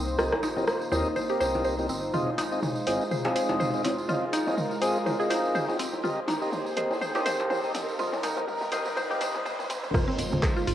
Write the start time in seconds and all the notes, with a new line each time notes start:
Already playing: C2 A#3 D#4 G4 C5, riser
0.08 tambourine
0.18 C2 C4 F4 G4 A#4 D#5, cross-stick, tambourine
0.32 cross-stick, djembe tone
0.43 D#4, tambourine, djembe slap
0.57 C4 G4 A#4 D#5, tambourine, djembe tone
0.67 cross-stick, tambourine
0.81 tambourine
0.92 D#2 C4 G4 A#4 C5 D#5, tambourine, djembe tone
1.05 tambourine
1.16 C5, tambourine, djembe tone
1.29 C4 G4 A#4 D#5, tambourine
1.40 C2 C5, tambourine, djembe slap
1.54 tambourine, djembe tone
1.64 C5, tambourine
1.79 C4 G4 A#4 D#5, tambourine, djembe tone
1.89 G1 C4, tambourine
2.03 tambourine
2.14 F1 G#3 C4 F4 G#4 D#5, mid tom, tambourine
2.27 djembe tone
2.38 D#4, open hi-hat, tambourine, djembe slap
2.52 C4 F4 G#4 D#5, tambourine
2.63 mid tom, tambourine, djembe tone
2.76 tambourine
2.87 G#1 C4 F4 G#4 C5 D#5, open hi-hat, tambourine, djembe tone
3.01 tambourine
3.11 C5, mid tom, tambourine
3.24 C4 F4 G#4 D#5, tambourine, djembe slap, djembe tone
3.35 C5, open hi-hat, tambourine
3.49 F1, tambourine, djembe slap, djembe tone
3.60 C5, mid tom, tambourine
3.73 C4 F4 G#4 D#5, tambourine
3.84 C4, open hi-hat, tambourine, djembe tone
3.98 tambourine
4.08 F1 C4 F4 G#4 A#4 D#5, mid tom, tambourine, djembe tone
4.33 D#4, open hi-hat, tambourine, djembe slap
4.47 C4 F4 G#4 D#5, tambourine, djembe tone
4.58 mid tom, tambourine
4.71 tambourine, djembe tone
4.82 G#1 C4 F4 G#4 C5 D#5, open hi-hat, tambourine
4.96 tambourine
5.06 C5, mid tom, tambourine, djembe tone
5.20 C4 F4 G#4 D#5, tambourine
5.30 F1 C5, open hi-hat, tambourine, djembe slap, djembe tone
5.45 tambourine
5.55 C5, mid tom, tambourine
5.69 C4 F4 G#4 D#5, tambourine, djembe tone
5.79 C4, open hi-hat, tambourine
5.93 tambourine, djembe tone
6.04 C2 A#3 C4 D#4 F4 G4 A#4 C5 D#5, mid tom, tambourine
6.28 D#4, open hi-hat, mid tom, tambourine, djembe slap, djembe tone
6.42 C4 G4 A#4 D#5, tambourine
6.52 mid tom, tambourine, djembe tone
6.66 tambourine
6.77 D#2 C4 G4 A#4 C5 D#5, open hi-hat, mid tom, tambourine
6.91 tambourine, djembe tone
7.01 C5, mid tom, tambourine
7.15 C4 G4 A#4 D#5, tambourine, djembe slap, djembe tone
7.26 C5, open hi-hat, mid tom, tambourine
7.39 C2, tambourine, djembe slap
7.50 C5, mid tom, tambourine, djembe tone
7.64 C4 G4 A#4 D#5, tambourine
7.75 C4, open hi-hat, mid tom, tambourine, djembe tone
7.88 tambourine
7.99 C2 C4 F4 G4 A#4 D#5, mid tom, tambourine
8.13 mid tom, tambourine, djembe tone
8.23 D#4, open hi-hat, mid tom, tambourine, djembe slap
8.37 C4 G4 A#4 D#5, mid tom, tambourine, djembe tone
8.48 mid tom, tambourine
8.61 mid tom, tambourine
8.72 D#2 C4 G4 A#4 C5 D#5, open hi-hat, mid tom, tambourine, djembe tone
8.85 mid tom, tambourine
8.96 C5, mid tom, tambourine, djembe tone
9.10 C4 G4 A#4 D#5, mid tom, tambourine
9.21 C5, open hi-hat, mid tom, tambourine, djembe slap
9.35 mid tom, tambourine, djembe tone
9.45 C5, mid tom, tambourine
9.59 C4 G4 A#4 D#5, mid tom, tambourine, djembe tone
9.70 G1 C4, open hi-hat, mid tom, tambourine
9.83 mid tom, tambourine
9.94 F1 G#3 D#4 F4 C5, kick, cross-stick, crash, tambourine, impact, high conga, low conga
10.08 C4
10.18 open hi-hat, tambourine, muted conga, low conga
10.32 tambourine, high conga, low conga
10.43 G#4, kick, cross-stick, clap, tambourine
10.57 F4, tambourine, muted conga
10.67 G#1 F4, open hi-hat, tambourine